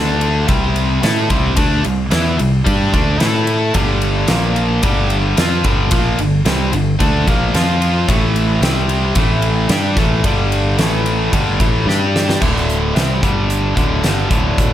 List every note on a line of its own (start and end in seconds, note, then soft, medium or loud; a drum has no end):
0.00 0.45 D2 loud
0.00 0.47 D3 medium
0.00 0.48 A3 medium
0.00 0.48 D4 medium
0.21 ride medium
0.47 0.99 C2 loud
0.47 1.02 C3 loud
0.47 1.02 G3 loud
0.47 1.01 C4 loud
0.47 kick loud
0.47 ride medium
0.76 ride medium
1.02 1.28 A2 loud
1.02 1.29 A3 medium
1.02 1.30 E4 medium
1.02 1.30 A4 loud
1.02 snare loud
1.02 ride medium
1.29 1.56 C2 medium
1.29 1.56 C3 medium
1.29 1.55 G3 medium
1.29 1.56 C4 medium
1.29 kick loud
1.29 ride medium
1.56 1.83 D2 medium
1.56 1.83 D3 loud
1.56 1.83 A3 medium
1.56 1.83 D4 loud
1.56 kick loud
1.56 ride loud
1.83 2.11 C2 medium
1.83 2.05 C3 medium
1.83 2.06 G3 medium
1.83 ride medium
2.11 2.38 E2 medium
2.11 2.38 E3 medium
2.11 2.38 B3 medium
2.11 2.39 E4 loud
2.11 snare loud
2.11 ride medium
2.38 2.65 C2 medium
2.38 2.60 C3 medium
2.38 2.60 G3 medium
2.38 ride medium
2.65 2.92 G2 medium
2.65 2.92 G3 loud
2.65 2.92 D4 loud
2.65 2.93 G4 loud
2.65 kick loud
2.65 ride medium
2.93 3.19 D2 medium
2.93 3.19 D3 medium
2.93 3.18 A3 medium
2.93 3.20 D4 loud
2.93 kick loud
2.93 ride medium
3.19 3.71 A2 medium
3.19 3.73 A3 medium
3.19 3.74 E4 medium
3.19 3.74 A4 medium
3.19 snare loud
3.19 ride medium
3.47 ride medium
3.74 4.25 G1 loud
3.74 4.27 G2 medium
3.74 4.28 D3 loud
3.74 4.28 G3 loud
3.74 kick loud
3.74 ride loud
4.02 ride medium
4.28 4.80 A#1 medium
4.28 4.82 A#2 medium
4.28 4.82 F3 medium
4.28 4.83 A#3 loud
4.28 snare loud
4.28 ride medium
4.56 ride medium
4.83 5.34 G1 medium
4.83 5.36 G2 loud
4.83 5.36 D3 medium
4.83 5.37 G3 loud
4.83 kick loud
4.83 ride loud
5.10 ride medium
5.37 5.63 F2 loud
5.37 5.64 F3 medium
5.37 5.64 C4 medium
5.37 5.64 F4 medium
5.37 snare loud
5.37 ride medium
5.64 5.90 G1 medium
5.64 5.90 G2 medium
5.64 5.91 D3 medium
5.64 5.91 G3 loud
5.64 kick loud
5.64 ride medium
5.91 6.17 A#1 medium
5.91 6.17 A#2 loud
5.91 6.18 F3 loud
5.91 6.18 A#3 loud
5.91 kick loud
5.91 ride loud
6.19 6.44 G1 medium
6.19 6.40 G2 medium
6.19 6.41 D3 medium
6.19 ride medium
6.45 6.71 C2 medium
6.45 6.72 C3 medium
6.45 6.72 G3 loud
6.45 6.72 C4 loud
6.45 snare loud
6.45 ride medium
6.73 6.98 G1 medium
6.73 6.94 G2 medium
6.73 6.94 D3 medium
6.73 ride medium
6.99 7.25 D2 medium
6.99 7.25 D3 loud
6.99 7.26 A3 loud
6.99 7.26 D4 loud
6.99 kick loud
6.99 ride medium
7.27 7.52 A#1 medium
7.27 7.53 A#2 medium
7.27 7.53 F3 medium
7.27 7.54 A#3 medium
7.27 kick loud
7.27 ride medium
7.54 8.04 F2 loud
7.54 8.07 F3 medium
7.54 8.08 C4 medium
7.54 8.08 F4 loud
7.54 snare loud
7.54 ride medium
7.82 ride medium
8.08 8.59 A1 loud
8.08 8.61 A2 loud
8.08 8.62 E3 loud
8.08 8.62 A3 loud
8.08 kick loud
8.08 ride medium
8.36 ride medium
8.61 9.12 C2 medium
8.61 9.15 C3 loud
8.61 9.16 G3 loud
8.61 9.16 C4 loud
8.61 snare loud
8.61 ride medium
8.89 ride medium
9.15 9.66 A1 medium
9.15 9.69 A2 loud
9.15 9.69 E3 loud
9.15 9.69 A3 loud
9.15 kick loud
9.15 ride medium
9.42 ride medium
9.69 9.95 G2 medium
9.69 9.96 G3 loud
9.69 9.96 D4 medium
9.69 9.97 G4 loud
9.69 snare loud
9.69 ride medium
9.97 10.22 A1 medium
9.97 10.23 A2 medium
9.97 10.24 E3 medium
9.97 10.24 A3 loud
9.97 kick loud
9.97 snare soft
9.97 ride medium
10.24 10.74 G1 medium
10.24 10.78 G2 loud
10.24 10.78 D3 loud
10.24 10.78 G3 loud
10.24 kick loud
10.24 ride loud
10.52 ride medium
10.77 11.28 A1 medium
10.77 11.32 A2 medium
10.77 11.32 E3 loud
10.77 11.32 A3 loud
10.77 snare loud
10.77 ride medium
11.06 ride medium
11.33 11.58 G1 medium
11.33 11.59 G2 medium
11.33 11.59 D3 loud
11.33 11.60 G3 loud
11.33 kick loud
11.33 ride loud
11.60 11.85 A1 medium
11.60 11.86 A2 medium
11.60 11.86 E3 medium
11.60 11.87 A3 loud
11.60 kick loud
11.60 ride medium
11.86 12.37 G2 medium
11.86 12.41 G3 medium
11.86 12.41 D4 loud
11.86 12.41 G4 medium
11.86 snare medium
12.16 snare medium
12.29 snare medium
12.41 12.92 D1 medium
12.41 12.94 D2 medium
12.41 12.95 A2 medium
12.41 12.95 D3 loud
12.41 kick loud
12.41 crash loud
12.56 snare soft
12.70 closed hi-hat medium
12.95 13.21 C2 medium
12.95 13.21 C3 medium
12.95 13.22 G3 loud
12.95 13.22 C4 loud
12.95 snare loud
12.95 closed hi-hat medium
13.22 13.73 G1 medium
13.22 13.74 G2 medium
13.22 13.76 D3 loud
13.22 13.76 G3 medium
13.22 kick loud
13.22 closed hi-hat medium
13.50 closed hi-hat medium
13.75 14.02 D1 medium
13.75 14.02 D2 medium
13.75 14.02 A2 medium
13.75 14.03 D3 medium
13.75 kick loud
13.75 closed hi-hat medium
14.02 14.29 G1 medium
14.02 14.29 G2 medium
14.02 14.30 D3 loud
14.02 14.30 G3 medium
14.02 snare loud
14.02 closed hi-hat medium
14.30 14.73 D1 medium
14.30 14.73 D2 medium
14.30 14.73 A2 medium
14.30 14.73 D3 medium
14.30 kick loud
14.30 closed hi-hat medium
14.58 kick loud
14.58 closed hi-hat medium